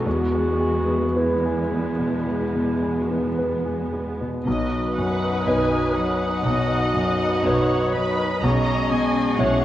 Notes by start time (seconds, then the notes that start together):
0.05 E2 G#3 B3 F#4
0.34 G#3
0.61 G#4
0.88 B3
1.16 G#3 B3 E4 B4
1.45 G#4
1.72 B3
1.99 B2
2.27 G#3
2.56 B2
2.83 G#4
3.00 F#4
3.10 B3 E4
3.19 D#4
3.29 E4
3.38 B4
3.65 G#4
3.93 B3
4.21 B2
4.46 B1 B2 F#3 D#4 F#4 B4 D#5 D#6
4.97 F#2 D#4 B4 F#5
5.46 B1 B2 D#4 B4 G#5
5.95 F#3 D#4 B4 F#5
6.45 B1 B2 D#5
6.94 F#2 D#4 B4
7.44 B1 B2 D#4 B4 C#5
7.93 F#3 D#4 B4 B5
8.41 B1 B2 G#3 C#4 G#4 D#5 A#5 C#6
8.90 B2 C#4 G#4 G#5
9.38 B1 B2 E4 C#5 F#5